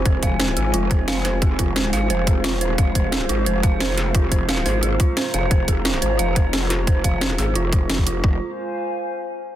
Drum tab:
HH |x-x-x-x-x-x-x-x-|x-x-x-o-x-x-x-x-|x-x-x-x-x-x-x-x-|x-x-x-o-x-x-x-x-|
SD |----oo------o-o-|----ooo-----o---|----oo------o-o-|----ooo-----o---|
BD |o-o-------o-----|o-o-------o-----|o-o-------o-----|o-o-------o-----|

HH |x-x-x-x-x-x-x-x-|x-x-x-o-x-x-x-x-|----------------|
SD |----oo------o-o-|----ooo-----o---|----------------|
BD |o-o-------o-----|o-o-------o--o--|o---------------|